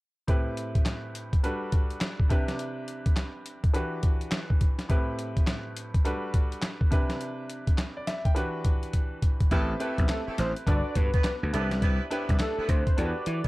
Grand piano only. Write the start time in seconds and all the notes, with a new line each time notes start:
0.28 A2 C4 E4 G4 B4
1.43 G3 D4 F#4 A4 B4
2.29 C3 D4 E4 G4 B4
3.74 E3 D4 F#4 G4 B4
4.89 A2 C4 E4 G4 B4
6.05 G3 D4 F#4 A4 B4
6.90 C3 D4 E4 G4 B4
7.97 D5
8.07 E5
8.25 G5
8.35 E3 D4 F#4 G4 B4
9.51 C4 E4 G4 B4
9.80 C4 E4 G4 B4
10.67 D4 F#4 A4 B4
11.53 D4 E4 G4 A4
11.61 B4
12.11 D4 E4 G4 B4
12.97 D4 F#4 G4 A4
13.05 B4